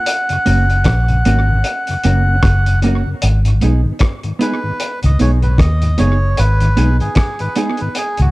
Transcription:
0.00 2.79 F#5 loud
0.06 closed hi-hat loud
0.29 0.39 F#2 medium
0.29 0.38 C#3 medium
0.29 closed hi-hat soft
0.46 0.83 F#1 medium
0.46 0.58 F#3 medium
0.46 0.63 A#3 medium
0.46 0.58 A#3 medium
0.46 0.64 C#4 medium
0.46 0.59 C#4 medium
0.46 0.64 F#4 medium
0.46 closed hi-hat medium
0.70 closed hi-hat soft
0.84 1.22 A#1 medium
0.84 kick loud
0.84 cross-stick loud
0.84 closed hi-hat medium
1.08 1.18 F#2 medium
1.08 1.18 C#3 medium
1.08 closed hi-hat soft
1.25 1.62 G#1 medium
1.25 1.38 F#3 medium
1.25 1.43 A#3 medium
1.25 1.38 A#3 medium
1.25 1.38 C#4 medium
1.25 1.43 C#4 medium
1.25 1.44 F#4 medium
1.25 closed hi-hat medium
1.49 1.57 F#2 medium
1.49 1.57 C#3 medium
1.49 muted clean electric guitar stroke soft
1.64 closed hi-hat medium
1.87 1.97 F#2 medium
1.87 1.97 C#3 medium
1.87 closed hi-hat soft
2.04 2.41 F#1 loud
2.04 2.16 F#3 medium
2.04 2.22 A#3 medium
2.04 2.16 A#3 medium
2.04 2.16 C#4 medium
2.04 2.22 C#4 medium
2.04 2.23 F#4 medium
2.04 closed hi-hat medium
2.28 2.36 A#3 medium
2.28 2.36 C#4 medium
2.43 3.02 F#1 medium
2.43 kick loud
2.43 cross-stick medium
2.43 closed hi-hat medium
2.66 2.75 F#2 medium
2.66 2.75 C#3 medium
2.66 closed hi-hat medium
2.82 2.95 F#3 medium
2.82 2.95 A#3 medium
2.82 3.01 A#3 medium
2.82 2.95 C#4 medium
2.82 3.01 C#4 medium
2.82 closed hi-hat medium
2.86 3.02 F#4 medium
3.06 3.15 F#2 medium
3.06 3.15 C#3 medium
3.22 3.59 G#1 loud
3.22 closed hi-hat loud
3.45 3.54 G#2 medium
3.45 3.54 D#3 medium
3.45 closed hi-hat soft
3.61 3.84 B1 medium
3.61 3.73 G#3 medium
3.61 3.74 B3 medium
3.61 3.79 B3 medium
3.61 3.74 D#4 medium
3.61 3.80 D#4 medium
3.61 3.80 G#4 medium
3.61 closed hi-hat medium
3.84 3.93 G#2 medium
3.84 3.93 D#3 medium
3.99 kick loud
3.99 cross-stick loud
3.99 closed hi-hat medium
4.23 4.33 G#2 medium
4.23 4.33 D#3 medium
4.23 closed hi-hat soft
4.39 4.53 G#3 medium
4.39 4.57 B3 medium
4.39 4.53 B3 medium
4.39 4.53 D#4 medium
4.39 4.58 D#4 medium
4.39 4.59 G#4 loud
4.39 5.00 B4 loud
4.39 closed hi-hat medium
4.63 4.72 G#2 medium
4.63 4.73 D#3 medium
4.63 muted clean electric guitar stroke soft
4.80 closed hi-hat medium
5.03 5.19 C#2 medium
5.03 5.12 G#2 medium
5.03 5.12 D#3 medium
5.03 5.19 D#5 loud
5.03 closed hi-hat soft
5.19 5.56 B1 medium
5.19 5.31 G#3 medium
5.19 5.32 B3 medium
5.19 5.37 B3 medium
5.19 5.32 D#4 medium
5.19 5.38 D#4 medium
5.19 5.38 G#4 medium
5.19 5.31 C#5 loud
5.19 closed hi-hat medium
5.42 5.51 G#2 medium
5.42 5.52 D#3 medium
5.42 5.58 B4 medium
5.42 muted clean electric guitar stroke soft
5.42 closed hi-hat soft
5.58 5.95 D#2 medium
5.58 6.00 D#5 loud
5.58 kick loud
5.58 cross-stick medium
5.58 closed hi-hat medium
5.82 5.91 G#2 medium
5.82 5.91 D#3 medium
5.82 closed hi-hat medium
5.97 6.35 F#1 medium
5.97 6.10 G#3 medium
5.97 6.10 B3 medium
5.97 6.16 B3 medium
5.97 6.10 D#4 medium
5.97 6.17 D#4 medium
5.97 6.17 G#4 medium
5.97 6.39 C#5 loud
5.97 closed hi-hat medium
6.22 muted clean electric guitar stroke soft
6.37 6.75 G#1 loud
6.37 6.97 B4 loud
6.37 closed hi-hat medium
6.60 6.70 G#2 medium
6.60 6.70 D#3 medium
6.60 closed hi-hat soft
6.77 6.99 B1 medium
6.77 6.90 G#3 medium
6.77 6.95 B3 medium
6.77 6.90 B3 medium
6.77 6.95 D#4 medium
6.77 6.90 D#4 medium
6.77 6.95 G#4 loud
6.77 closed hi-hat medium
7.00 7.09 G#2 medium
7.00 7.09 D#3 medium
7.00 7.15 G#4 medium
7.00 closed hi-hat soft
7.15 7.41 G#4 medium
7.15 kick loud
7.15 cross-stick loud
7.15 closed hi-hat medium
7.39 7.49 G#2 medium
7.39 7.49 D#3 medium
7.39 7.57 B4 loud
7.39 closed hi-hat soft
7.56 7.69 G#3 medium
7.56 7.74 B3 medium
7.56 7.69 B3 medium
7.56 7.74 D#4 medium
7.56 7.69 D#4 medium
7.56 7.80 G#4 medium
7.56 7.75 G#4 medium
7.56 closed hi-hat medium
7.77 7.89 D#3 medium
7.77 7.97 B4 medium
7.77 muted clean electric guitar stroke soft
7.77 closed hi-hat soft
7.82 7.89 G#2 medium
7.95 8.20 G#4 loud
7.95 closed hi-hat medium
8.17 8.31 C#2 medium
8.17 8.29 G#2 medium
8.17 8.28 D#3 medium
8.17 8.31 F#4 medium
8.17 closed hi-hat medium

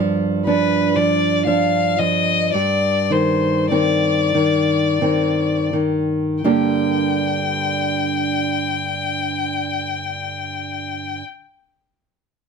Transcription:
0.00 2.50 G2 soft
0.00 0.43 F3 soft
0.46 0.92 F3 soft
0.46 0.92 D4 soft
0.46 0.97 B4 medium
0.96 1.43 F3 soft
0.96 1.45 D5 medium
1.46 1.95 F3 soft
1.46 1.95 D4 soft
1.46 2.00 F5 medium
1.99 2.50 F3 soft
1.99 2.53 D#5 medium
2.53 6.41 G2 soft
2.53 3.14 D5 medium
3.10 3.67 D#3 soft
3.10 3.71 C5 soft
3.71 4.31 D#3 soft
3.71 4.32 C4 soft
3.71 5.70 D5 medium
4.34 4.98 D#3 soft
5.01 5.69 D#3 soft
5.01 5.69 C4 soft
5.73 6.41 D#3 soft
6.44 11.21 G2 soft
6.44 11.21 D3 soft
6.44 11.22 A#3 soft
6.44 11.22 D4 soft
6.44 11.23 G4 soft
6.44 11.22 A#4 soft
6.44 11.21 G5 soft

